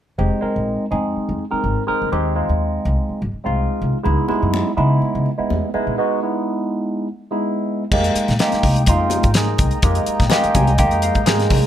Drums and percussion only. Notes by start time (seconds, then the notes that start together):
4.05 muted conga
4.29 high conga
4.54 high conga
5.02 muted conga
5.26 muted conga
5.50 high conga
5.74 muted conga
7.92 kick, crash, muted conga
8.04 closed hi-hat
8.16 closed hi-hat
8.28 snare, closed hi-hat
8.39 snare, closed hi-hat, high conga
8.52 snare, closed hi-hat
8.63 kick, open hi-hat, muted conga
8.76 closed hi-hat
8.86 kick, closed hi-hat, muted conga
9.10 closed hi-hat, muted conga, high conga
9.23 kick, closed hi-hat
9.34 snare, closed hi-hat, high conga
9.58 kick, closed hi-hat
9.71 closed hi-hat
9.82 kick, closed hi-hat, muted conga
9.95 closed hi-hat
10.06 closed hi-hat
10.20 kick, snare, closed hi-hat
10.30 snare, closed hi-hat, high conga
10.44 closed hi-hat
10.55 kick, closed hi-hat, muted conga, high conga
10.67 closed hi-hat
10.78 kick, closed hi-hat, muted conga
10.91 closed hi-hat
11.02 closed hi-hat, muted conga
11.15 kick, closed hi-hat
11.26 snare, closed hi-hat, high conga
11.40 snare, closed hi-hat
11.50 kick, open hi-hat, low conga